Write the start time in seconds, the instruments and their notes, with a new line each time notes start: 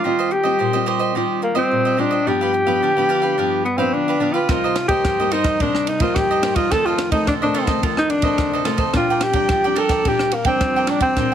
Already playing: alto saxophone F4
0.04 nylon-string guitar D#3 G3 C4 F4, cavaquinho D#4 G4 C5 D#5
0.19 cavaquinho G4 C5 D#5
0.31 alto saxophone G4, muted cavaquinho stroke
0.43 nylon-string guitar G3 C4 F4, cavaquinho G4 C5 D#5
0.59 nylon-string guitar A#2, cavaquinho D#4 G4 C5 D#5
0.73 nylon-string guitar G3 C4 F4, cavaquinho G4 C5 D#5
0.86 cavaquinho D#4 G4 C5 D#5
0.99 cavaquinho G4 C5 D#5
1.15 nylon-string guitar D#3 G3 C4 F4, cavaquinho D#4 G4 C5 D#5
1.42 alto saxophone A#3, muted cavaquinho stroke
1.55 nylon-string guitar G3 C4 F4, alto saxophone C4, cavaquinho G4 C5 D#5
1.71 nylon-string guitar A#2
1.85 cavaquinho G4 C5 D#5
1.97 nylon-string guitar G3 C4 F4, alto saxophone D4, cavaquinho D#4 G4 C5 D#5
2.11 cavaquinho G4 C5 D#5
2.27 nylon-string guitar G2 F3 B3 D4, cavaquinho D4 G4 B4 F5, alto saxophone G4
2.41 cavaquinho G4 B4 F5
2.53 muted cavaquinho stroke
2.66 nylon-string guitar F3 B3 D4, cavaquinho G4 B4 F5
2.82 nylon-string guitar D3, cavaquinho D4 G4 B4 F5
2.97 nylon-string guitar F3 B3 D4, cavaquinho G4 B4 F5
3.09 cavaquinho D4 G4 B4 F5
3.22 cavaquinho G4 B4 F5
3.38 nylon-string guitar G2 F3 B3 D4, cavaquinho D4 G4 B4 F5
3.65 alto saxophone B3, muted cavaquinho stroke
3.77 nylon-string guitar F3 B3 D4, alto saxophone C4, cavaquinho G4 B4 F5
3.93 nylon-string guitar D3, alto saxophone D4
4.08 cavaquinho G4 B4 F5
4.20 nylon-string guitar F3 B3 D4, cavaquinho D4 G4 B4 F5
4.33 alto saxophone F4, cavaquinho G4 B4 F5
4.49 nylon-string guitar C3 G3 A#3 D#4, cavaquinho D#4 A#4 C5 D#5, kick, cross-stick, ride
4.64 cavaquinho A#4 C5 D#5
4.76 muted cavaquinho stroke, cross-stick, ride
4.88 nylon-string guitar G3 A#3 D#4, alto saxophone G4, cavaquinho A#4 C5 D#5, kick, ride
5.05 nylon-string guitar G2, cavaquinho D#4 A#4 C5 D#5, kick, cross-stick, ride
5.19 nylon-string guitar G3 A#3 D#4, cavaquinho A#4 C5 D#5
5.31 cavaquinho D#4 A#4 C5 D#5, alto saxophone D#4, ride
5.44 cavaquinho A#4 C5 D#5, kick, cross-stick, ride
5.60 nylon-string guitar C3 G3 A#3 D#4, alto saxophone D4, cavaquinho D#4 A#4 C5 D#5, kick, ride
5.75 cross-stick
5.87 alto saxophone D#4, muted cavaquinho stroke, ride
6.00 nylon-string guitar G3 A#3 D#4, alto saxophone F4, cavaquinho A#4 C5 D#5, kick, ride
6.15 nylon-string guitar G2, alto saxophone G4, kick, cross-stick, ride
6.31 cavaquinho A#4 C5 D#5
6.42 nylon-string guitar G3 A#3 D#4, cavaquinho D#4 A#4 C5 D#5, cross-stick, ride
6.55 alto saxophone F4, cavaquinho A#4 C5 D#5, kick, ride
6.71 nylon-string guitar F2 D#3 A3 C4, cavaquinho F4 A4 C5 D#5, alto saxophone A4, kick, cross-stick, ride
6.85 alto saxophone F4, cavaquinho A4 C5 D#5
6.98 muted cavaquinho stroke, cross-stick, ride
7.12 nylon-string guitar D#3 A3 C4, alto saxophone D#4, cavaquinho A4 C5 D#5, kick, ride
7.27 nylon-string guitar C3, alto saxophone D4, cavaquinho F4 A4 C5 D#5, kick, cross-stick, ride
7.42 nylon-string guitar D#3 A3 C4, alto saxophone D4, cavaquinho A4 C5 D#5
7.54 cavaquinho F4 A4 C5 D#5, ride
7.67 nylon-string guitar D#3 A3 C4, cavaquinho A4 C5 D#5, kick, cross-stick, ride
7.83 nylon-string guitar F2 D#3 A3 C4, cavaquinho F4 A4 C5 D#5, kick, ride
7.97 alto saxophone D#4, cross-stick
8.10 alto saxophone D4, muted cavaquinho stroke, ride
8.22 nylon-string guitar D#3 A3 C4, cavaquinho A4 C5 D#5, kick, ride
8.38 nylon-string guitar C3, kick, cross-stick, ride
8.53 cavaquinho A4 C5 D#5
8.65 nylon-string guitar D#3 A3 C4, cavaquinho F4 A4 C5 D#5, cross-stick, ride
8.77 cavaquinho A4 C5 D#5, kick, ride
8.94 nylon-string guitar A#2 G3 C4 D4, cavaquinho D4 A#4 D5 G5, alto saxophone F4, kick, cross-stick, ride
9.10 cavaquinho A#4 D5 G5
9.21 alto saxophone G4, muted cavaquinho stroke, cross-stick, ride
9.33 nylon-string guitar G3 C4 D4, cavaquinho A#4 D5 G5, kick, ride
9.49 nylon-string guitar F3, cavaquinho D4 A#4 D5 G5, kick, cross-stick, ride
9.64 nylon-string guitar G3 C4 D4, cavaquinho A#4 D5 G5
9.76 cavaquinho D4 A#4 D5 G5, alto saxophone A4, ride
9.89 cavaquinho A#4 D5 G5, kick, cross-stick, ride
10.05 nylon-string guitar A#2 G3 C4 D4, cavaquinho D4 A#4 D5 G5, alto saxophone G4, kick, ride
10.19 cross-stick
10.31 alto saxophone A#3, muted cavaquinho stroke, ride
10.45 nylon-string guitar G3 C4 D4, alto saxophone C4, cavaquinho A#4 D5 G5, kick, ride
10.61 nylon-string guitar F3, kick, cross-stick, ride
10.76 cavaquinho A#4 D5 G5
10.87 nylon-string guitar G3 C4 D4, cavaquinho D4 A#4 D5 G5, alto saxophone D4, cross-stick, ride
11.00 alto saxophone C4, cavaquinho A#4 D5 G5, kick, ride
11.16 nylon-string guitar A#2 G3 C4 D4, cavaquinho D4 A#4 D5 G5, kick, cross-stick, ride